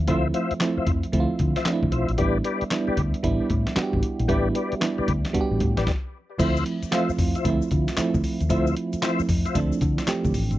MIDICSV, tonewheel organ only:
0, 0, Header, 1, 2, 480
1, 0, Start_track
1, 0, Tempo, 526316
1, 72, Time_signature, 4, 2, 24, 8
1, 9654, End_track
2, 0, Start_track
2, 0, Title_t, "Tonewheel organ"
2, 0, Program_c, 0, 16
2, 70, Note_on_c, 0, 65, 88
2, 74, Note_on_c, 0, 72, 77
2, 76, Note_on_c, 0, 76, 90
2, 249, Note_off_c, 0, 65, 0
2, 251, Note_off_c, 0, 72, 0
2, 252, Note_off_c, 0, 76, 0
2, 309, Note_on_c, 0, 65, 68
2, 311, Note_on_c, 0, 72, 66
2, 314, Note_on_c, 0, 76, 85
2, 489, Note_off_c, 0, 65, 0
2, 490, Note_off_c, 0, 72, 0
2, 491, Note_off_c, 0, 76, 0
2, 705, Note_on_c, 0, 65, 74
2, 707, Note_on_c, 0, 72, 70
2, 711, Note_on_c, 0, 76, 80
2, 834, Note_off_c, 0, 65, 0
2, 835, Note_off_c, 0, 72, 0
2, 837, Note_off_c, 0, 76, 0
2, 1423, Note_on_c, 0, 65, 70
2, 1426, Note_on_c, 0, 72, 65
2, 1429, Note_on_c, 0, 76, 79
2, 1553, Note_off_c, 0, 65, 0
2, 1555, Note_off_c, 0, 72, 0
2, 1556, Note_off_c, 0, 76, 0
2, 1746, Note_on_c, 0, 65, 73
2, 1750, Note_on_c, 0, 72, 64
2, 1751, Note_on_c, 0, 76, 86
2, 1927, Note_off_c, 0, 65, 0
2, 1929, Note_off_c, 0, 72, 0
2, 1930, Note_off_c, 0, 76, 0
2, 1988, Note_on_c, 0, 67, 91
2, 1990, Note_on_c, 0, 71, 80
2, 1994, Note_on_c, 0, 74, 106
2, 2168, Note_off_c, 0, 67, 0
2, 2169, Note_off_c, 0, 71, 0
2, 2171, Note_off_c, 0, 74, 0
2, 2228, Note_on_c, 0, 67, 72
2, 2230, Note_on_c, 0, 71, 63
2, 2232, Note_on_c, 0, 74, 78
2, 2408, Note_off_c, 0, 67, 0
2, 2410, Note_off_c, 0, 71, 0
2, 2410, Note_off_c, 0, 74, 0
2, 2621, Note_on_c, 0, 67, 74
2, 2624, Note_on_c, 0, 71, 71
2, 2626, Note_on_c, 0, 74, 77
2, 2752, Note_off_c, 0, 67, 0
2, 2754, Note_off_c, 0, 71, 0
2, 2754, Note_off_c, 0, 74, 0
2, 3906, Note_on_c, 0, 67, 86
2, 3910, Note_on_c, 0, 71, 82
2, 3912, Note_on_c, 0, 74, 93
2, 4087, Note_off_c, 0, 67, 0
2, 4089, Note_off_c, 0, 71, 0
2, 4090, Note_off_c, 0, 74, 0
2, 4147, Note_on_c, 0, 67, 70
2, 4150, Note_on_c, 0, 71, 68
2, 4152, Note_on_c, 0, 74, 75
2, 4328, Note_off_c, 0, 67, 0
2, 4329, Note_off_c, 0, 71, 0
2, 4330, Note_off_c, 0, 74, 0
2, 4543, Note_on_c, 0, 67, 79
2, 4544, Note_on_c, 0, 71, 70
2, 4547, Note_on_c, 0, 74, 84
2, 4673, Note_off_c, 0, 67, 0
2, 4674, Note_off_c, 0, 71, 0
2, 4675, Note_off_c, 0, 74, 0
2, 5261, Note_on_c, 0, 67, 70
2, 5265, Note_on_c, 0, 71, 61
2, 5267, Note_on_c, 0, 74, 75
2, 5392, Note_off_c, 0, 67, 0
2, 5394, Note_off_c, 0, 71, 0
2, 5395, Note_off_c, 0, 74, 0
2, 5827, Note_on_c, 0, 65, 90
2, 5829, Note_on_c, 0, 72, 82
2, 5832, Note_on_c, 0, 76, 96
2, 6056, Note_off_c, 0, 65, 0
2, 6057, Note_off_c, 0, 72, 0
2, 6059, Note_off_c, 0, 76, 0
2, 6309, Note_on_c, 0, 65, 84
2, 6312, Note_on_c, 0, 72, 69
2, 6315, Note_on_c, 0, 76, 86
2, 6489, Note_off_c, 0, 65, 0
2, 6490, Note_off_c, 0, 72, 0
2, 6492, Note_off_c, 0, 76, 0
2, 6704, Note_on_c, 0, 65, 72
2, 6709, Note_on_c, 0, 72, 65
2, 6710, Note_on_c, 0, 76, 75
2, 6834, Note_off_c, 0, 65, 0
2, 6836, Note_off_c, 0, 72, 0
2, 6837, Note_off_c, 0, 76, 0
2, 7749, Note_on_c, 0, 65, 98
2, 7752, Note_on_c, 0, 72, 85
2, 7755, Note_on_c, 0, 76, 99
2, 7977, Note_off_c, 0, 65, 0
2, 7978, Note_off_c, 0, 72, 0
2, 7980, Note_off_c, 0, 76, 0
2, 8227, Note_on_c, 0, 65, 78
2, 8229, Note_on_c, 0, 72, 69
2, 8232, Note_on_c, 0, 76, 94
2, 8408, Note_off_c, 0, 65, 0
2, 8409, Note_off_c, 0, 72, 0
2, 8410, Note_off_c, 0, 76, 0
2, 8621, Note_on_c, 0, 65, 70
2, 8624, Note_on_c, 0, 72, 69
2, 8626, Note_on_c, 0, 76, 75
2, 8752, Note_off_c, 0, 65, 0
2, 8753, Note_off_c, 0, 72, 0
2, 8755, Note_off_c, 0, 76, 0
2, 9654, End_track
0, 0, End_of_file